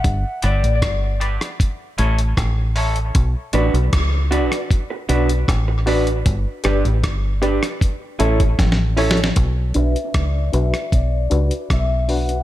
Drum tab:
HH |x-----x--x--x-----x--x--x-----x--x--x-----o--x--|x-----x--x--x-----x--x--x-----x--x--x-----o--x--|x-----x--x--x-----x--x--x-----x--x--x-----o--x--|x-----x--x--x-----x--x--x-----x--x--x-----o--x--|
SD |------------r--------r--------------r-----------|------------r--------r--------------r-----------|------r-----r--------r--------------o-o-----o-o-|------------r--------r--------------r-----------|
BD |o-----------o-----------o-----------o-----------|o-----------o-----------o-----------o-----------|o-----------o-----------o--------o--o-----------|o-----------o-----------o-----------o-----------|